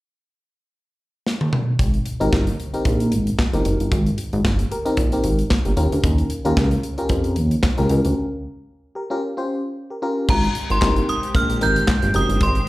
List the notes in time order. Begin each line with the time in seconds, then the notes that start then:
1.27 snare
1.41 high tom
1.53 mid tom
1.79 G#1, kick, closed hi-hat
1.94 closed hi-hat
2.06 closed hi-hat
2.20 G#1 C4 D#4 G4 A#4, closed hi-hat
2.33 G1, kick, snare, clap
2.47 closed hi-hat
2.60 closed hi-hat
2.73 C4 D#4 G4 A#4, closed hi-hat
2.85 A#1, kick, closed hi-hat
3.00 closed hi-hat
3.12 G#1, closed hi-hat
3.27 closed hi-hat
3.39 kick, snare, clap
3.53 G1 C4 D#4 G4 A#4, closed hi-hat
3.65 F#1, closed hi-hat
3.80 G1, closed hi-hat
3.92 G#1, kick, closed hi-hat
4.06 closed hi-hat
4.18 closed hi-hat
4.33 G#1, closed hi-hat
4.45 G1, kick, snare, clap
4.59 closed hi-hat
4.71 G4 A#4, closed hi-hat
4.85 C4 D#4 G4 A#4, closed hi-hat
4.97 A#1, kick, closed hi-hat
5.12 C4 D#4 G4 A#4, closed hi-hat
5.24 G#1, closed hi-hat
5.39 closed hi-hat
5.50 kick, snare, clap
5.65 G1 G4 A#4, closed hi-hat
5.77 D#2 C#4 F4 G4 A#4, closed hi-hat
5.92 D2, closed hi-hat
6.04 D#2, kick, closed hi-hat
6.18 closed hi-hat
6.30 closed hi-hat
6.45 D#2 C#4 F4 G4 A#4, closed hi-hat
6.57 C#2, kick, snare, clap
6.71 closed hi-hat
6.83 closed hi-hat
6.98 C#4 F4 G4 A#4, closed hi-hat
7.09 F2, kick, closed hi-hat
7.24 closed hi-hat
7.36 D#2, closed hi-hat
7.51 closed hi-hat
7.63 kick, snare, clap
7.77 C#2 C#4 F4 G4 A#4, closed hi-hat
7.89 C#2, closed hi-hat
8.05 D2, closed hi-hat
8.95 G4 A#4
9.10 C#4 F4 G4 A#4
9.37 C#4 F4 G4 C5
9.90 G4 A#4
10.02 C#4 F4 G4 A#4
10.29 G#1 G#3 C4 G4 A#5, kick, crash
10.43 closed hi-hat
10.55 closed hi-hat
10.70 G#1 C6, closed hi-hat
10.81 G1 C4 D#4 G4 A#4, kick, snare, clap
10.96 closed hi-hat
11.09 D#6, closed hi-hat
11.23 closed hi-hat
11.35 A#1 F6, kick, closed hi-hat
11.49 G4 A#4, closed hi-hat
11.61 G#1 C4 D#4 G4 A#4 G6, closed hi-hat
11.76 closed hi-hat
11.88 kick, snare, clap
12.02 G1, closed hi-hat
12.14 F#1 C4 D#4 G4 A#4 D#6, closed hi-hat
12.29 G1, closed hi-hat
12.41 G#1 G4 C6, kick, closed hi-hat
12.55 closed hi-hat